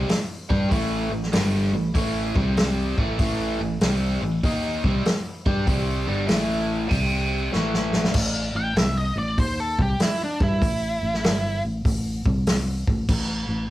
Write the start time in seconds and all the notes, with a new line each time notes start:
0.09 muted overdriven electric guitar stroke, snare, open hi-hat
0.49 G2 G3 D4 G4, kick
0.70 A1 A2 E3 A3, kick, open hi-hat
1.11 A1 A2 E3
1.23 snare
1.33 G1 G2 D3 G3, snare, open hi-hat
1.73 A1 A2 E3
1.94 A1 A2 E3 A3, kick, open hi-hat
2.35 C2 C3 G3 C4, kick
2.57 snare, open hi-hat
2.98 A1 A2 E3 A3, kick
3.19 A1 A2 E3 A3, kick, open hi-hat
3.61 A1 A2 E3
3.81 C2 C3 G3 C4, snare, open hi-hat
4.22 A1 A2 E3
4.43 D#2 D#3 A#3 D#4, kick, open hi-hat
4.84 C2 C3 G3 C4, kick
5.06 muted overdriven electric guitar stroke, snare, open hi-hat
5.46 G2 G3 D4 G4, kick
5.66 C2 C3 G3 C4, kick, open hi-hat
6.07 G1 G2 D3 G3
6.27 A1 A2 E3 A3, snare, open hi-hat
6.89 C2 C3 G3 C4, kick, open hi-hat
7.52 A1 A2 E3 A3, snare
7.74 snare
7.93 snare
8.04 snare
8.14 A1, kick, crash
8.55 A1 G5
8.76 C2 E5, snare, open hi-hat
8.97 D#5
9.16 A1 D5
9.38 D#2 C5, kick, open hi-hat
9.60 A4
9.79 C2 G4, kick
10.00 E4, snare, open hi-hat
10.24 D4
10.40 G2 E4, kick
10.62 A1, kick, open hi-hat
11.03 A1
11.14 snare
11.24 G1, snare, open hi-hat
11.65 A1
11.85 A1, kick, open hi-hat
12.26 C2, kick
12.47 snare, open hi-hat
12.87 A1, kick
13.09 A1, kick, crash
13.49 A1